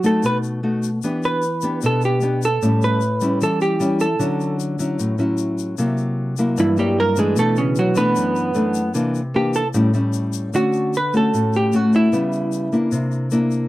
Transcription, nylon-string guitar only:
0.00 0.21 F#3 medium
0.00 0.60 A3 medium
0.04 0.60 D#4 medium
0.04 0.60 F#4 medium
0.23 1.00 B2 medium
0.63 0.88 A3 soft
0.63 0.89 D#4 medium
0.63 0.89 F#4 medium
1.04 1.80 E3 medium
1.04 1.42 B3 medium
1.04 1.43 D4 medium
1.04 1.43 G4 medium
1.63 2.19 B3 medium
1.63 2.19 D4 medium
1.63 2.19 G4 medium
1.83 2.60 B2 medium
2.22 2.47 B3 medium
2.22 2.47 D4 medium
2.22 2.48 G4 medium
2.62 3.39 A2 medium
2.62 3.01 G3 medium
2.62 3.01 C#4 medium
2.62 3.02 E4 medium
3.21 3.77 G3 medium
3.21 3.78 C#4 medium
3.21 3.78 E4 medium
3.42 4.18 E3 medium
3.80 4.05 G3 medium
3.80 4.06 C#4 medium
3.80 4.06 E4 medium
4.19 4.97 D3 medium
4.19 4.76 F#3 medium
4.19 4.76 C#4 medium
4.19 4.76 E4 medium
4.79 5.15 F#3 medium
4.79 5.15 C#4 medium
4.79 5.16 E4 medium
4.99 5.76 A2 medium
5.19 5.75 F#3 medium
5.19 5.75 C#4 soft
5.19 5.75 E4 medium
5.78 6.55 C3 medium
5.78 6.34 F#3 medium
5.78 6.35 A#3 medium
5.78 6.35 E4 medium
6.38 6.74 F#3 medium
6.38 6.74 A#3 medium
6.38 6.75 E4 medium
6.58 7.35 G2 medium
6.77 7.13 F#3 medium
6.77 7.14 A#3 medium
6.77 7.14 E4 medium
7.17 7.93 E3 medium
7.17 7.93 A3 medium
7.17 7.93 D4 medium
7.36 8.13 B2 medium
7.95 8.52 E3 medium
7.95 8.52 A3 medium
7.95 8.52 D4 medium
8.15 8.93 F#2 medium
8.55 8.80 E3 medium
8.55 8.81 A3 medium
8.55 8.81 D4 medium
8.94 9.72 C3 medium
8.94 9.20 E3 medium
8.94 9.20 A#3 medium
8.94 9.20 D4 medium
9.34 9.61 E3 medium
9.34 9.61 A#3 medium
9.34 9.61 D4 medium
9.74 10.51 A2 medium
9.74 9.91 G3 medium
9.74 9.91 C#4 medium
9.74 9.91 E4 medium
9.94 10.50 G3 medium
9.94 10.50 C#4 medium
9.94 10.50 E4 medium
10.53 11.31 D3 medium
10.53 10.93 A3 soft
10.53 10.93 C#4 soft
10.53 10.93 F#4 medium
11.13 11.69 A3 medium
11.13 11.70 C#4 medium
11.13 11.70 F#4 medium
11.34 12.10 A2 medium
11.73 12.09 A3 soft
11.73 12.09 C#4 soft
11.73 12.10 F#4 medium
12.12 12.89 C#3 medium
12.12 12.68 G3 medium
12.12 12.68 B3 medium
12.12 12.69 E4 medium
12.72 13.28 A#3 medium
12.72 13.28 D4 medium
12.72 13.29 E4 medium
12.92 13.68 C3 medium
13.32 13.68 A#3 medium
13.32 13.68 D4 medium
13.32 13.68 E4 medium

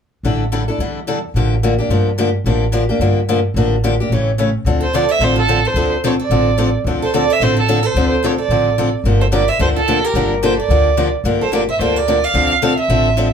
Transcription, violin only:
4.83 4.96 C5 medium
4.95 5.13 D5 medium
5.11 5.25 E5 medium
5.24 5.38 C5 medium
5.39 5.68 A4 medium
5.67 5.93 C5 medium
6.07 6.13 C#5 medium
6.23 6.72 D5 medium
7.05 7.14 C5 medium
7.16 7.34 D5 medium
7.33 7.45 E5 medium
7.43 7.57 C5 medium
7.59 7.87 A4 medium
7.86 8.12 C5 medium
8.25 8.32 C#5 medium
8.40 8.90 D5 medium
9.21 9.26 C5 medium
9.33 9.50 D5 medium
9.49 9.60 E5 medium
9.61 9.68 C5 medium
9.77 10.06 A4 medium
10.05 10.31 A#4 medium
10.45 10.58 C5 medium
10.60 11.10 D5 medium
11.42 11.52 C5 medium
11.55 11.61 D5 medium
11.70 11.80 E5 medium
11.82 11.99 C5 medium
11.97 12.26 D5 medium
12.24 12.51 F5 medium
12.64 12.77 F5 medium
12.79 13.29 E5 medium

